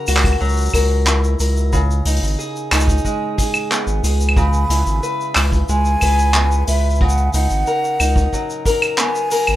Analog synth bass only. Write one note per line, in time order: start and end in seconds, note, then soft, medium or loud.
0.08 0.36 C#2 medium
0.41 0.69 C#2 medium
0.74 1.36 C#2 loud
1.40 2.02 C#2 medium
2.05 2.20 C#2 loud
2.22 2.36 G#1 medium
2.72 2.99 C#2 loud
3.87 4.01 G#1 medium
4.03 4.65 C#2 loud
4.69 4.83 C#2 loud
4.86 5.00 G#1 medium
5.36 5.63 C#2 medium
5.69 5.96 C#2 medium
6.02 6.63 C#2 loud
6.68 7.29 C#2 loud
7.34 7.47 C#2 loud
7.51 7.64 G#1 medium
8.00 8.27 C#2 medium
9.48 9.56 G#1 medium